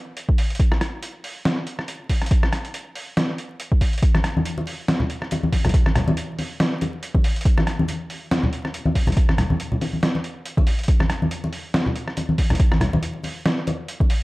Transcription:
0.17 closed hi-hat
0.29 kick
0.38 open hi-hat
0.50 closed hi-hat
0.55 closed hi-hat
0.60 kick, closed hi-hat
0.72 cross-stick
0.81 cross-stick, closed hi-hat
1.02 closed hi-hat
1.24 open hi-hat
1.45 snare, closed hi-hat
1.67 closed hi-hat
1.79 cross-stick
1.88 closed hi-hat
2.10 kick, open hi-hat
2.22 cross-stick, closed hi-hat
2.26 closed hi-hat
2.31 kick, closed hi-hat
2.43 cross-stick
2.53 cross-stick, closed hi-hat
2.65 closed hi-hat
2.74 closed hi-hat
2.95 open hi-hat
3.17 snare, closed hi-hat
3.38 closed hi-hat
3.60 closed hi-hat
3.72 kick
3.81 kick, open hi-hat
3.93 closed hi-hat
3.98 closed hi-hat
4.03 kick, closed hi-hat
4.15 cross-stick, muted conga, high conga
4.24 cross-stick, closed hi-hat
4.37 high conga
4.45 closed hi-hat
4.58 muted conga
4.67 open hi-hat
4.88 snare, closed hi-hat, muted conga
5.00 low conga
5.10 closed hi-hat
5.22 cross-stick
5.31 closed hi-hat, muted conga
5.43 high conga
5.53 kick, open hi-hat
5.65 cross-stick, closed hi-hat, muted conga, low conga
5.69 closed hi-hat
5.74 kick, closed hi-hat
5.86 cross-stick, high conga
5.96 cross-stick, closed hi-hat, low conga
6.08 muted conga, high conga, low conga
6.17 closed hi-hat
6.38 open hi-hat, muted conga
6.60 snare, closed hi-hat
6.81 closed hi-hat, muted conga
7.03 closed hi-hat
7.15 kick, muted conga
7.24 open hi-hat
7.36 closed hi-hat
7.41 closed hi-hat
7.45 kick, closed hi-hat
7.58 cross-stick, muted conga, high conga
7.67 cross-stick, closed hi-hat
7.79 high conga
7.88 closed hi-hat, muted conga
8.10 open hi-hat
8.31 snare, closed hi-hat, muted conga
8.43 low conga
8.53 closed hi-hat
8.65 cross-stick, muted conga
8.74 closed hi-hat
8.86 high conga
8.95 kick, open hi-hat
9.07 cross-stick, closed hi-hat, muted conga, low conga
9.12 closed hi-hat
9.17 kick, closed hi-hat
9.29 cross-stick, high conga
9.38 cross-stick, closed hi-hat, muted conga, low conga
9.50 high conga, low conga
9.60 closed hi-hat
9.72 low conga
9.81 open hi-hat, muted conga
9.93 high conga
10.03 snare, closed hi-hat
10.15 muted conga
10.24 closed hi-hat
10.46 closed hi-hat
10.57 kick, muted conga
10.67 open hi-hat
10.79 closed hi-hat
10.84 closed hi-hat
10.88 kick, closed hi-hat
11.00 cross-stick, muted conga, high conga
11.10 cross-stick, closed hi-hat
11.22 high conga
11.31 closed hi-hat
11.44 muted conga
11.53 open hi-hat
11.74 snare, closed hi-hat, muted conga
11.86 low conga
11.95 closed hi-hat
12.07 cross-stick
12.17 closed hi-hat, muted conga
12.29 high conga
12.38 kick, open hi-hat
12.50 cross-stick, closed hi-hat, muted conga, low conga
12.55 closed hi-hat
12.60 kick, closed hi-hat
12.72 cross-stick, high conga
12.81 cross-stick, closed hi-hat, low conga
12.93 muted conga, high conga, low conga
13.03 closed hi-hat
13.23 open hi-hat, muted conga
13.45 snare, closed hi-hat
13.67 closed hi-hat, muted conga
13.88 closed hi-hat
14.00 kick, muted conga
14.10 open hi-hat

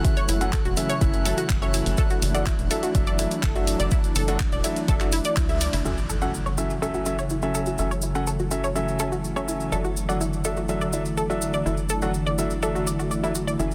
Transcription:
Already playing: C#3 E3 F#3 A3 E4 F#6
0.05 F#3 C#4 A4 E5, kick, closed hi-hat, cabasa
0.17 C#5, closed hi-hat, cabasa
0.29 F#1 E4, open hi-hat, cabasa
0.41 F#3 C#4 A4 F#5, closed hi-hat, cabasa
0.53 A4, kick, clap, closed hi-hat, cabasa
0.65 E1 F#4, closed hi-hat, cabasa
0.77 F#3 C#4 A4 E5, open hi-hat, cabasa
0.89 C#5, closed hi-hat, cabasa
1.01 F#1 F#3 C#4 E4 A4 E5, kick, closed hi-hat, cabasa
1.13 closed hi-hat, cabasa
1.25 F#3 C#4 A4 E5, open hi-hat, cabasa
1.37 F#4, closed hi-hat, cabasa
1.49 F#1, kick, clap, closed hi-hat, cabasa
1.62 F#3 C#4 A4 C#5 E5, closed hi-hat, cabasa
1.74 E4, open hi-hat, cabasa
1.86 F#1, open hi-hat, cabasa
1.97 F#3 D4 A4 E5, kick, closed hi-hat, cabasa
2.10 F#4, closed hi-hat, cabasa
2.22 F#1, open hi-hat, cabasa
2.35 F#3 D4 A4 D5 F#5, closed hi-hat, cabasa
2.46 E4, kick, clap, closed hi-hat, cabasa
2.59 E1, closed hi-hat, cabasa
2.71 F#3 D4 A4 E5, open hi-hat, cabasa
2.83 F#4, closed hi-hat, cabasa
2.95 F#1 F#3 D4 A4 E5, kick, closed hi-hat, cabasa
3.07 D5, closed hi-hat, cabasa
3.19 F#3 D4 E4 A4 E5, open hi-hat, cabasa
3.31 closed hi-hat, cabasa
3.43 F#1 A4, kick, clap, closed hi-hat, cabasa
3.55 F#3 D4 F#4 A4 E5, closed hi-hat, cabasa
3.67 open hi-hat, cabasa
3.80 F#1 D5, closed hi-hat, cabasa
3.91 F#3 D4 E4 A4 E5, kick, closed hi-hat, cabasa
4.04 closed hi-hat, cabasa
4.15 F#1 A4, open hi-hat, cabasa
4.28 F#3 D4 F#4 A4 F#5, closed hi-hat, cabasa
4.40 kick, clap, closed hi-hat, cabasa
4.52 E1 D5, closed hi-hat, cabasa
4.64 F#3 D4 E4 A4 E5, open hi-hat, cabasa
4.76 closed hi-hat, cabasa
4.88 F#1 F#3 D4 A4 E5, kick, closed hi-hat, cabasa
5.00 F#4, clap, closed hi-hat, cabasa
5.12 E4, open hi-hat, cabasa
5.24 D5, closed hi-hat, cabasa
5.36 C#2 E4, kick, clap, closed hi-hat, cabasa
5.49 F#3 D4 A4 E5, closed hi-hat, cabasa
5.61 D5, open hi-hat, cabasa
5.73 F#1 E4, open hi-hat, cabasa
5.85 F#1 C#3 E3 F#3 A3 C#4 E4 A4 E5, impact, cabasa
5.98 cabasa
6.09 A4, cabasa
6.22 F#3 C#4 F#4 A4 F#5, cabasa
6.34 cabasa
6.46 C#5, cabasa
6.58 F#3 C#4 E4 A4 E5, cabasa
6.70 cabasa
6.82 F#3 C#4 A4 E5, cabasa
6.94 F#4, cabasa
7.06 F#3 C#4 A4 E5, cabasa
7.19 C#5, cabasa
7.30 E4, cabasa
7.42 F#3 C#4 A4 E5, cabasa
7.55 A4, cabasa
7.66 F#4, cabasa
7.78 F#1 F#3 C#4 A4 E5, cabasa
7.91 C#5, cabasa
8.02 E4, cabasa
8.15 F#3 C#4 A4 F#5, cabasa
8.27 A4, cabasa
8.39 F#4, cabasa
8.51 F#3 C#4 A4 E5, cabasa
8.64 C#5, cabasa
8.75 F#3 C#4 E4 A4 E5, cabasa
8.88 cabasa
8.99 F#3 C#4 A4 E5, cabasa
9.12 F#4, cabasa
9.24 cabasa
9.36 F#3 C#4 A4 C#5 E5, cabasa
9.48 E4, cabasa
9.60 cabasa
9.72 F#1 D3 F#3 D4 A4 E5, cabasa
9.85 F#4, cabasa
9.97 cabasa
10.09 F#3 D4 A4 D5 F#5, cabasa
10.21 E4, cabasa
10.33 cabasa
10.44 F#3 D4 A4 E5, cabasa
10.57 F#4, cabasa
10.69 F#3 D4 A4 E5, cabasa
10.81 D5, cabasa
10.93 F#3 D4 E4 A4 E5, cabasa
11.05 cabasa
11.17 A4, cabasa
11.30 F#3 D4 F#4 A4 E5, cabasa
11.42 cabasa
11.53 D5, cabasa
11.66 F#1 F#3 D4 E4 A4 E5, cabasa
11.77 cabasa
11.89 A4, cabasa
12.02 F#3 D4 F#4 A4 F#5, cabasa
12.14 cabasa
12.27 D5, cabasa
12.38 F#3 D4 E4 A4 E5, cabasa
12.50 cabasa
12.63 F#3 D4 A4 E5, cabasa
12.75 F#4, cabasa
12.87 D5, cabasa
12.99 F#4, cabasa
13.11 D5, cabasa
13.23 F#3 D4 E4 A4 E5, cabasa
13.35 F#4, cabasa
13.47 D5, cabasa
13.59 F#1 C#3 F#3 C#4 E4 A4 E5, cabasa
13.71 cabasa

